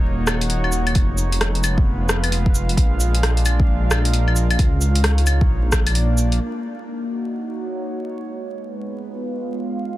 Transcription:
Already playing: detuned saw bass D#1, ambient pad A#3 D#4 F#4 C#5 F#5
0.27 cross-stick, cabasa, claves
0.41 closed hi-hat
0.50 closed hi-hat
0.64 claves
0.72 cabasa
0.87 closed hi-hat, claves
0.95 detuned saw bass F1, ambient pad G#3, kick, closed hi-hat
1.18 cabasa
1.25 ambient pad B3
1.32 closed hi-hat
1.41 cross-stick, closed hi-hat
1.55 closed hi-hat
1.62 ambient pad F4 F5, closed hi-hat, cabasa, claves
1.68 ambient pad B4
1.78 kick
2.09 cross-stick, cabasa
2.24 closed hi-hat, claves
2.32 closed hi-hat
2.46 kick
2.55 cabasa
2.69 closed hi-hat
2.77 detuned saw bass A#1, kick, closed hi-hat
2.91 ambient pad D4
3.00 cabasa
3.15 closed hi-hat
3.23 cross-stick, closed hi-hat
3.37 closed hi-hat
3.46 closed hi-hat, cabasa, claves
3.56 ambient pad A#4, kick
3.91 cross-stick, cabasa, claves
4.05 closed hi-hat
4.13 closed hi-hat
4.28 claves
4.36 cabasa
4.50 closed hi-hat, claves
4.59 detuned saw bass C#2, kick, closed hi-hat
4.76 ambient pad D#4 C#5
4.81 cabasa
4.95 closed hi-hat
5.04 cross-stick, closed hi-hat
5.18 closed hi-hat
5.27 closed hi-hat, cabasa, claves
5.41 kick
5.49 detuned saw bass A#1, ambient pad A#3
5.59 ambient pad D4
5.70 ambient pad D5, kick, cross-stick, cabasa
5.87 closed hi-hat, claves
5.95 closed hi-hat
6.18 cabasa
6.32 closed hi-hat
6.57 ambient pad D#4
6.79 ambient pad F#4
7.00 ambient pad F#5
7.25 ambient pad C#5
8.22 ambient pad G#3
8.41 ambient pad B4
8.55 ambient pad B3
9.05 ambient pad F4 F5

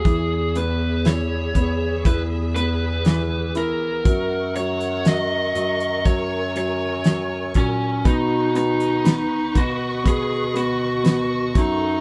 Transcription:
Already playing: lead electric guitar G#4
0.05 bass clarinet E2, grand piano E3, string section G#4 E5, kick, closed hi-hat
0.55 grand piano B3, lead electric guitar B4, closed hi-hat
1.05 grand piano E4, lead electric guitar C#5, snare, closed hi-hat
1.55 bass clarinet E2, grand piano B3, kick, closed hi-hat
2.05 bass clarinet E2, grand piano E4, lead electric guitar B4, kick, closed hi-hat
2.55 grand piano B3, lead electric guitar B4, closed hi-hat
3.05 grand piano E3, snare, closed hi-hat
3.55 grand piano E4, lead electric guitar A#4, closed hi-hat
4.04 bass clarinet F#2, grand piano F#3, string section A#4 F#5 C#6, kick, closed hi-hat
4.55 grand piano F#3, lead electric guitar C#5, closed hi-hat
4.80 closed hi-hat
5.05 grand piano F#3, lead electric guitar D#5, snare, closed hi-hat
5.55 bass clarinet F#2, grand piano F#3, closed hi-hat
5.80 closed hi-hat
6.05 grand piano F#3, lead electric guitar C#5, string section G#5, kick, closed hi-hat
6.55 grand piano F#3, lead electric guitar C#5, closed hi-hat
7.04 grand piano F#3, snare, closed hi-hat
7.54 bass clarinet A#2, grand piano F#3, lead electric guitar C#4, kick, closed hi-hat
8.05 bass clarinet B2, grand piano B3, lead electric guitar D#4, string section B4 D#5 C#6, kick, closed hi-hat
8.55 grand piano B3, lead electric guitar D#4, closed hi-hat
8.80 closed hi-hat
9.04 grand piano B3, snare, closed hi-hat
9.55 bass clarinet B2, grand piano B3, lead electric guitar F#4, kick, closed hi-hat
10.04 bass clarinet B2, grand piano B3, kick, closed hi-hat
10.08 lead electric guitar G#4
10.55 grand piano B3, lead electric guitar F#4, closed hi-hat
11.04 grand piano B3, snare, closed hi-hat
11.54 bass clarinet F#2, grand piano F#3, lead electric guitar D#4, string section A4 F#5, kick, closed hi-hat

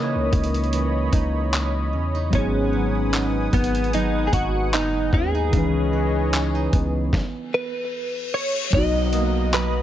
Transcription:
Already playing: 808-style bass C#3, nylon-string guitar C#3 E3 D#4, synth keys E3 C#4 D#4 C#5, clean electric guitar A#3, analog synth pad C#5 D#5 B5 D#6, celesta C#6 D#6 F#6, downlifter
0.03 celesta G#6
0.15 808-style bass C#2
0.33 808-style bass C#2, kick, closed hi-hat
0.44 closed hi-hat
0.54 closed hi-hat
0.64 closed hi-hat
0.73 nylon-string guitar E3, closed hi-hat
1.13 808-style bass C#2, nylon-string guitar D#4, kick, closed hi-hat
1.53 clap, closed hi-hat
1.93 808-style bass E2, nylon-string guitar C#4
2.15 nylon-string guitar D#4
2.30 808-style bass G#1, nylon-string guitar G#2, synth keys F#3 B3, analog synth pad B4 F#5 G#5 D#6, kick, closed hi-hat
2.35 clean electric guitar C#4, synth keys D#4 G#4
2.73 nylon-string guitar F#3
3.13 nylon-string guitar D#4, clap, closed hi-hat
3.53 808-style bass G#1, nylon-string guitar B3, clean electric guitar B3, kick, closed hi-hat
3.64 closed hi-hat
3.75 closed hi-hat
3.84 closed hi-hat
3.93 nylon-string guitar F#3, clean electric guitar D#4, closed hi-hat
4.27 clean electric guitar G#4
4.33 808-style bass G#1, nylon-string guitar D#4, clean electric guitar F#4, kick, closed hi-hat
4.73 808-style bass F#1, nylon-string guitar B3, clean electric guitar D#4, celesta A#5, clap, closed hi-hat
5.13 808-style bass D#2, nylon-string guitar C#4, clean electric guitar G#4, kick
5.35 nylon-string guitar D#4
5.50 808-style bass C#2, nylon-string guitar C#3, synth keys D#3 C#4, analog synth pad B4 C#5 D#5, kick, closed hi-hat
5.55 synth keys E3 D#4 B4
5.93 nylon-string guitar E3
6.33 nylon-string guitar C#4, clap, closed hi-hat
6.55 nylon-string guitar D#4
6.73 808-style bass C#2, nylon-string guitar B3, kick, closed hi-hat
7.13 kick, snare, reverse cymbal
7.54 clean electric guitar B4
8.34 clean electric guitar C#5
8.70 808-style bass B1, nylon-string guitar B2, synth keys F#3 B3, analog synth pad D#5 F#5 A#5 D#6, kick, closed hi-hat, downlifter
8.74 synth keys D#4 F#4, clean electric guitar D#5
9.13 nylon-string guitar A#3, celesta D#6, closed hi-hat
9.53 nylon-string guitar F#3, clean electric guitar B4, clap, closed hi-hat

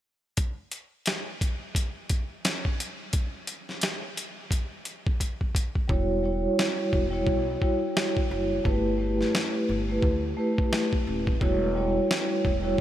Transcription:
0.37 kick, closed hi-hat
0.71 closed hi-hat
1.06 snare, closed hi-hat
1.41 kick, closed hi-hat
1.75 kick, closed hi-hat
2.09 kick, closed hi-hat
2.45 snare, closed hi-hat
2.65 kick
2.80 closed hi-hat
3.13 kick, closed hi-hat
3.47 closed hi-hat
3.69 snare
3.81 snare, closed hi-hat
4.17 closed hi-hat
4.51 kick, closed hi-hat
4.85 closed hi-hat
5.07 kick
5.20 kick, closed hi-hat
5.41 kick
5.55 kick, closed hi-hat
5.75 kick
5.88 upright bass E1, vibraphone G3 E4 F#4 C#5, kick
6.23 vibraphone G3 E4 F#4 C#5
6.59 snare
6.93 upright bass E1, kick
7.11 vibraphone G3 E4 F#4 C#5
7.27 upright bass B1, kick
7.61 vibraphone G3 E4 F#4 C#5, kick
7.97 snare
8.17 kick
8.28 upright bass F#1, vibraphone G3 E4 F#4 C#5
8.64 upright bass G1, vibraphone A3 E4 G4 B4, kick
8.98 vibraphone A3 E4 G4 B4
9.21 snare
9.35 snare
9.69 upright bass G1
9.89 vibraphone A3 E4 G4 B4
10.02 upright bass D2, kick
10.37 vibraphone A3 E4 G4 B4
10.58 kick
10.73 snare
10.93 kick
11.07 upright bass D#1
11.27 kick
11.40 upright bass E1, vibraphone G3 E4 F#4 C#5, kick
11.75 vibraphone G3 E4 F#4 C#5
12.11 snare
12.45 upright bass E1, kick
12.62 vibraphone G3 E4 F#4 C#5

